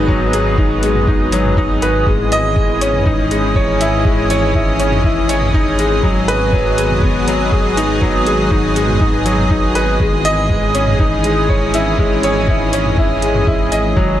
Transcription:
Already playing: detuned saw bass G#1, grand piano F#3 G#3 B3 D#4 G#4 B4, analog synth pad F#3 B3 G#4 D#5
0.08 grand piano F#3, kick
0.33 grand piano G#4, closed hi-hat
0.58 grand piano D#4, kick
0.83 grand piano G#3, closed hi-hat
0.95 mid tom
1.08 grand piano D#4, kick
1.32 grand piano F#3, closed hi-hat
1.45 mid tom
1.57 grand piano D#4, kick
1.82 grand piano B4, closed hi-hat
2.07 detuned saw bass G#1, analog synth pad E3, grand piano G#3, kick
2.30 analog synth pad C#4, grand piano D#5, closed hi-hat
2.56 grand piano G#3, kick
2.81 grand piano C#4, closed hi-hat
2.94 mid tom
3.06 grand piano D#4, kick
3.31 grand piano G#3, closed hi-hat
3.55 grand piano C#5, kick
3.81 grand piano E4, closed hi-hat
4.05 grand piano G#3, kick
4.30 grand piano C#5, closed hi-hat
4.55 grand piano E4, kick
4.80 grand piano C#4, closed hi-hat
4.92 mid tom
5.04 grand piano E4, kick
5.29 grand piano C#5, closed hi-hat
5.42 mid tom
5.54 grand piano D#4, kick
5.79 grand piano G#3, closed hi-hat
6.03 detuned saw bass G#1, analog synth pad F#3, grand piano F#3, kick
6.19 analog synth pad B3
6.28 grand piano B4, closed hi-hat
6.53 grand piano F#3, kick
6.78 grand piano G#3, closed hi-hat
6.90 mid tom
7.03 grand piano B3, kick
7.28 grand piano F#3, closed hi-hat
7.52 grand piano G#4, kick
7.77 grand piano D#4, closed hi-hat
8.02 grand piano F#3, kick
8.27 grand piano G#4, closed hi-hat
8.51 grand piano D#4, kick
8.76 grand piano G#3, closed hi-hat
8.89 mid tom
9.01 grand piano D#4, kick
9.26 grand piano F#3, closed hi-hat
9.38 mid tom
9.50 grand piano D#4, kick
9.75 grand piano B4, closed hi-hat
10.00 detuned saw bass G#1, analog synth pad E3, grand piano G#3, kick
10.25 grand piano D#5, closed hi-hat
10.50 grand piano G#3, kick
10.59 analog synth pad C#4
10.75 grand piano C#4, closed hi-hat
10.87 mid tom
10.99 grand piano D#4, kick
11.24 grand piano G#3, closed hi-hat
11.49 grand piano C#5, kick
11.74 grand piano E4, closed hi-hat
11.99 grand piano G#3, kick
12.23 grand piano C#5, closed hi-hat
12.48 grand piano E4, kick
12.73 grand piano C#4, closed hi-hat
12.86 mid tom
12.98 grand piano E4, kick
13.22 grand piano G#3, closed hi-hat
13.35 mid tom
13.47 grand piano E4, kick
13.72 grand piano D#5, closed hi-hat
13.96 detuned saw bass G#1, grand piano F#3, analog synth pad F#3, kick

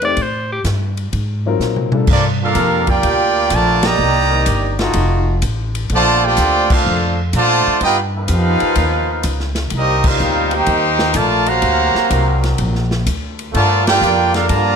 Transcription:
Already playing: upright bass E2
0.02 grand piano A3 C4 D#4 G4 C5, tenor saxophone D5, ride
0.17 upright bass A2, kick, ride
0.22 tenor saxophone C5
0.52 tenor saxophone G4
0.64 upright bass G2, kick, snare, hi-hat pedal, ride
0.97 ride
1.13 upright bass G#2, kick, ride
1.46 grand piano F#3 C4 D#4 F4 A#4
1.60 upright bass A#2, snare, hi-hat pedal
1.76 mid tom
1.92 grand piano G3 A#3 D4 F4 A4, mid tom
2.07 upright bass G2, trombone section F3 A#3 D4, kick, crash
2.12 trumpet section A#3 F4 A4 D5
2.42 trombone section A#3 D4 F4, trumpet section D4 A4 A#4 F5
2.55 upright bass F2, trombone section G3 A#3 F4 A#4, kick, hi-hat pedal, ride
2.87 trombone section A#3 D4 G4, trumpet section F4 A#4 D5 G5, kick, ride
3.03 upright bass D2, kick, ride
3.50 upright bass A#1, trombone section D3 F3 A3, trumpet section F4 A#4 D5 A5, kick, hi-hat pedal, ride
3.83 trombone section D#3 G3 A#3, trumpet section G4 D5 D#5 A#5, snare, ride
3.99 upright bass C2
4.31 trombone section D#3 C4 D#4 A#4
4.46 upright bass G1, kick, hi-hat pedal, ride
4.79 trombone section A3 D#4 F4 F#4, snare, ride
4.93 upright bass F1, kick, ride
5.42 upright bass A1, kick, hi-hat pedal, ride
5.75 ride
5.90 upright bass A#1, trombone section D3 F3 A3, kick, ride
5.94 trumpet section F4 C5 D5 A5
6.25 trombone section A3 D4 G4, trumpet section F4 C5 D5 G5
6.37 upright bass D2, trombone section A#2 D3 C4 A4, kick, hi-hat pedal, ride
6.70 trombone section A3 D4 F4, trumpet section D4 A4 C5 F5, kick, crash
6.87 upright bass F2
7.33 upright bass A#2, trombone section D3 F3 A3, trumpet section F4 C5 D5 A5, kick, hi-hat pedal, ride
7.67 muted upright bass stroke
7.81 upright bass G2, trombone section B3 D#4 G4, trumpet section F4 B4 D#5 G5, kick, ride
8.15 trombone section F3 B3 F4, trumpet section D#4 A#4 B4 F5
8.28 upright bass F2, trombone section F3 B3 D#4 G4, kick, hi-hat pedal, ride
8.60 muted upright bass stroke, ride
8.75 upright bass D#2, kick, ride
9.23 upright bass C#2, kick, hi-hat pedal, ride
9.40 snare
9.55 snare, ride
9.70 upright bass C2, kick, ride
9.74 trombone section G3 A#3 D#4, trumpet section C4 G4 A#4 D#5
10.04 trombone section G3 A#3 F4, trumpet section A#4 C5, kick, crash
10.08 trumpet section D#4 F5
10.19 upright bass D2, trombone section G3 C4 D#4 A#4, hi-hat pedal
10.51 trombone section A#3 D#4 G4, trumpet section D#4 A#4 C5 G5, ride
10.66 upright bass D#2, kick, ride
10.99 snare
11.14 upright bass A#1, trombone section A3, trumpet section F4 A#4 D5 A5, kick, hi-hat pedal, ride
11.46 trombone section C3 F#3 A#3, trumpet section F#4 C5 F5 A#5, ride
11.62 upright bass D2, kick, ride
11.95 muted upright bass stroke, snare
12.10 upright bass C2, trombone section F#3 C4 D4 A#4, kick, hi-hat pedal, ride
12.44 snare, ride
12.58 upright bass A#1, kick, ride
12.75 snare
12.91 snare
13.06 upright bass D2, kick, hi-hat pedal, ride
13.39 ride
13.52 upright bass G2, trombone section D3 F3 A3, trumpet section F4 A#4 D5 A5, kick, ride
13.87 trombone section A#3 D4 G4, trumpet section F4 A#4 D5 G5, snare, ride
14.01 upright bass F2, trombone section G3 A#3 F4 A4, hi-hat pedal
14.34 trombone section A#3 D4 F4, trumpet section D4 A4 A#4 F5, snare, ride
14.48 upright bass G2, trombone section D3 F3, trumpet section F4 D5 A5 A#5, kick, ride
14.53 trombone section A#3

